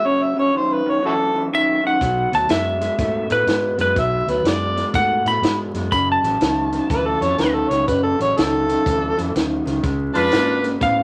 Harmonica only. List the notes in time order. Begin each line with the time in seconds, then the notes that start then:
0.06 C#5
0.22 E5
0.39 C#5
0.56 C5
0.73 B4
0.89 C#5
1.05 E4 F#4 A4
3.98 E5
4.30 B4
4.48 D5
6.92 B4
7.06 A4
7.23 C#5
7.38 B4
7.54 A4
7.69 C#5
7.87 B4
8.03 A4
8.21 C#5
8.37 A4